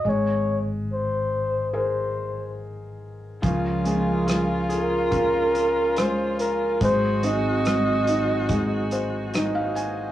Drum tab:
HH |--------|xxxxxxxx|xxxxxxxx|
SD |--------|--r---r-|--r---r-|
BD |--------|o---o---|o---o---|